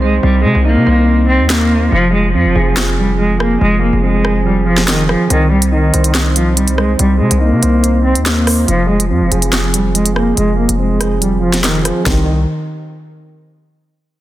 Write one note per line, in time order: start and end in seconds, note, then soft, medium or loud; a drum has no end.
0.00 0.19 C2 loud
0.00 0.21 G#3 medium
0.00 0.23 C4 loud
0.00 0.65 D#4 medium
0.00 0.02 C5 medium
0.00 0.85 C5 medium
0.23 0.46 C2 loud
0.23 0.42 G3 medium
0.23 1.07 C4 medium
0.44 0.54 C3 loud
0.44 0.63 G#3 medium
0.55 0.78 C2 loud
0.65 1.25 A#3 loud
0.65 1.71 D#4 medium
0.76 0.86 C3 loud
0.86 1.41 C2 loud
0.86 1.70 C5 medium
1.08 1.28 C4 medium
1.29 1.47 C4 medium
1.29 1.49 C4 medium
1.39 1.90 D#2 loud
1.50 1.90 A#3 medium
1.50 1.92 C4 medium
1.50 snare loud
1.50 clap loud
1.71 1.92 C5 medium
1.92 2.36 F1 loud
1.92 2.75 F3 medium
1.92 2.11 F3 loud
2.14 2.32 G#3 medium
2.34 2.47 F2 loud
2.34 2.74 F3 medium
2.34 3.40 C4 medium
2.45 2.55 F1 loud
2.55 3.57 F1 loud
2.55 3.39 G#4 loud
2.77 2.97 F3 medium
2.77 snare loud
2.77 clap loud
2.98 3.18 F3 medium
2.98 3.16 G3 medium
3.19 3.60 F3 medium
3.19 3.37 G#3 medium
3.40 3.58 A#3 medium
3.40 4.23 G#4 medium
3.40 cross-stick medium
3.61 3.92 F1 loud
3.61 4.45 F3 medium
3.61 3.80 G#3 loud
3.82 4.01 A#3 medium
3.93 5.16 F1 loud
4.03 4.43 G#3 medium
4.03 5.09 C4 medium
4.24 5.08 G#4 medium
4.24 cross-stick medium
4.45 4.66 F3 medium
4.45 4.64 G3 medium
4.67 4.87 F3 medium
4.67 4.85 F3 medium
4.77 snare medium
4.88 5.06 D#3 medium
4.88 5.31 F3 medium
4.88 snare loud
4.88 clap loud
5.09 5.28 F3 medium
5.09 5.30 G#4 medium
5.09 cross-stick medium
5.30 5.91 C2 loud
5.30 5.49 D#3 loud
5.30 6.13 C4 loud
5.30 closed hi-hat medium
5.52 5.70 G3 medium
5.62 closed hi-hat medium
5.72 6.12 D#3 medium
5.72 6.78 D#4 medium
5.94 6.95 C2 loud
5.94 6.77 C5 medium
5.94 closed hi-hat medium
6.04 closed hi-hat medium
6.14 6.35 C4 medium
6.14 snare loud
6.14 clap loud
6.36 6.54 F3 medium
6.36 6.56 C4 medium
6.36 closed hi-hat medium
6.57 6.75 G3 medium
6.57 6.98 C4 medium
6.57 closed hi-hat medium
6.68 closed hi-hat medium
6.78 6.97 G#3 medium
6.78 7.61 C5 medium
6.78 cross-stick medium
6.99 7.22 C2 loud
6.99 7.18 G3 loud
6.99 7.83 C4 medium
6.99 closed hi-hat medium
7.20 7.30 C3 loud
7.20 7.39 G#3 medium
7.31 7.54 C2 loud
7.31 closed hi-hat medium
7.41 8.01 A#3 loud
7.41 8.47 D#4 medium
7.52 7.62 C3 loud
7.63 8.17 C2 loud
7.63 8.46 C5 medium
7.63 closed hi-hat medium
7.84 8.04 C4 medium
7.84 closed hi-hat medium
8.05 8.23 C4 medium
8.05 8.25 C4 medium
8.15 8.66 D#2 loud
8.15 closed hi-hat medium
8.26 8.66 A#3 medium
8.26 8.68 C4 medium
8.26 snare loud
8.26 clap loud
8.26 closed hi-hat medium
8.47 8.68 C5 medium
8.47 cross-stick medium
8.47 open hi-hat medium
8.68 9.12 F1 loud
8.68 8.87 F3 loud
8.68 9.51 F3 medium
8.68 closed hi-hat medium
8.90 9.08 G#3 medium
9.00 closed hi-hat medium
9.10 9.23 F2 loud
9.10 9.50 F3 medium
9.10 10.16 C4 medium
9.21 9.31 F1 loud
9.31 10.33 F1 loud
9.31 10.15 G#4 medium
9.31 closed hi-hat medium
9.42 closed hi-hat medium
9.53 9.73 F3 medium
9.53 snare loud
9.53 clap loud
9.74 9.94 F3 medium
9.74 9.92 G3 medium
9.74 closed hi-hat medium
9.95 10.36 F3 medium
9.95 10.13 G#3 medium
9.95 closed hi-hat medium
10.06 closed hi-hat medium
10.16 10.35 A#3 medium
10.16 10.99 G#4 medium
10.16 cross-stick medium
10.37 10.68 F1 loud
10.37 11.21 F3 medium
10.37 10.56 G#3 loud
10.37 closed hi-hat medium
10.58 10.77 A#3 medium
10.69 11.92 F1 loud
10.69 closed hi-hat medium
10.79 11.19 G#3 medium
10.79 11.85 C4 medium
11.00 11.84 G#4 medium
11.00 cross-stick medium
11.00 closed hi-hat medium
11.21 11.42 F3 medium
11.21 11.40 G3 medium
11.21 closed hi-hat medium
11.43 11.63 F3 medium
11.43 11.61 F3 medium
11.53 snare medium
11.53 closed hi-hat medium
11.64 11.82 D#3 medium
11.64 12.07 F3 medium
11.64 snare loud
11.64 clap loud
11.64 closed hi-hat medium
11.85 12.04 F3 medium
11.85 12.06 G#4 medium
11.85 cross-stick loud
11.85 closed hi-hat medium
12.06 12.46 C2 loud
12.06 12.26 D#3 medium
12.06 12.26 C4 medium
12.06 12.26 D#4 medium
12.06 12.26 G4 medium
12.06 12.26 C5 medium
12.06 kick loud
12.06 snare loud